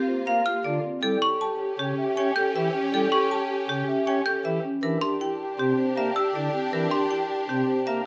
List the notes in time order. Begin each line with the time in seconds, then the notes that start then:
Already playing: A#3 C4 F4 G4
0.08 F4 C5
0.27 A#3 F4 F5
0.46 F4 G4 F6
0.65 D3 F4 D5
0.84 C4
1.02 G3 C#4 E4 G4 A4
1.22 G4 A4 C#6
1.41 G4 A5
1.60 G4
1.79 C#3 C#4 G4
1.98 G4 E5
2.17 C#4 G4 G5
2.36 G4 A4 G6
2.55 E3 G4 E5
2.74 C#4 G4
2.93 G3 E4 G4 A4
3.12 G4 A4 C#6
3.31 G4 A5
3.51 G4
3.69 C#3 C#4 G4
3.88 G4 E5
4.07 C#4 G4 G5
4.26 G4 A4 G6
4.45 E3 G4 E5
4.64 C#4
4.82 E3 D4 G4 A#4
5.01 G4 C6
5.21 E4 G4 G5
5.40 G4
5.59 C3 C4 G4
5.78 G4 C5
5.97 A#3 G4 E5
6.15 G4 E6
6.34 D3 E4 G4 D5
6.53 C4 G4
6.73 E3 D4 G4 A#4
6.91 G4 C6
7.10 E4 G4 G5
7.30 G4
7.49 C3 C4 G4
7.68 G4 C5
7.87 A#3 G4 E5